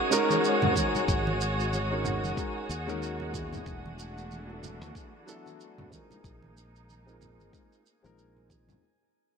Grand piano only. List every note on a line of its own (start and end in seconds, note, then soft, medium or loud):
0.10 0.71 G#3 medium
0.10 0.72 C#4 medium
0.10 0.72 D#4 medium
0.10 0.73 F#4 medium
0.10 0.73 A#4 loud
0.73 1.85 G#3 medium
0.73 1.86 C#4 medium
0.73 1.87 D#4 medium
0.77 1.88 F#4 medium
0.77 1.88 A#4 medium
1.90 2.33 G#3 medium
1.90 2.33 C#4 medium
1.90 2.34 D#4 medium
1.90 2.34 F#4 medium
1.90 2.35 A#4 medium
2.36 2.61 G#3 medium
2.36 2.61 C#4 medium
2.36 2.61 D#4 medium
2.36 2.62 F#4 medium
2.36 2.62 A#4 medium
2.87 3.30 G#3 medium
2.87 3.30 C#4 medium
2.87 3.31 D#4 medium
2.87 3.31 F#4 medium
2.87 3.31 A#4 loud
3.31 4.43 F#3 medium
3.31 4.44 B3 medium
3.36 4.46 E4 medium
3.36 4.46 G#4 medium
4.47 5.23 F#3 medium
4.47 5.23 B3 medium
4.47 5.24 D4 medium
4.51 5.25 E4 medium
4.51 5.26 A4 medium
5.26 5.88 F#3 medium
5.26 5.88 B3 medium
5.26 5.89 D4 medium
5.26 5.89 E4 medium
5.26 5.89 A4 loud
5.89 7.01 G#3 medium
5.89 7.02 C4 medium
5.89 7.03 D#4 medium
5.93 7.03 F4 medium
5.93 7.04 A#4 medium
7.06 7.49 G#3 medium
7.06 7.49 C4 medium
7.06 7.50 D#4 medium
7.06 7.50 F4 medium
7.06 7.51 A#4 medium
7.52 7.77 G#3 medium
7.52 7.77 C4 medium
7.52 7.77 D#4 medium
7.52 7.78 F4 medium
7.52 7.78 A#4 medium
8.03 8.46 G#3 medium
8.03 8.46 C4 medium
8.03 8.47 D#4 medium
8.03 8.47 F4 medium
8.03 8.47 A#4 loud
8.49 8.80 G#3 medium
8.49 8.80 C4 medium
8.49 8.81 D#4 medium
8.49 8.81 F4 medium
8.49 8.81 G#4 medium